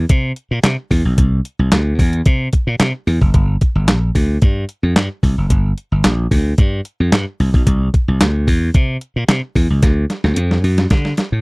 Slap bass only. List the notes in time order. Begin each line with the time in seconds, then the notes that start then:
0.10 C3
0.51 A#2
0.64 C3
0.91 E2
1.05 B1
1.18 C2
1.59 C2
1.72 D2
1.99 E2
2.26 C3
2.67 A#2
2.80 C3
3.07 E2
3.21 F#1
3.34 G1
3.75 G1
3.88 A#1
4.15 D2
4.42 G2
4.83 F2
4.96 G2
5.23 C2
5.38 F#1
5.50 G1
5.92 G1
6.05 A#1
6.31 D2
6.58 G2
7.00 F2
7.13 G2
7.40 C2
7.54 B1
7.67 C2
8.08 C2
8.21 D2
8.47 E2
8.75 C3
9.16 A#2
9.29 C3
9.56 E2
9.70 C#2
9.83 D2
10.24 D2
10.37 F2
10.64 F#2
10.91 D3
11.32 A2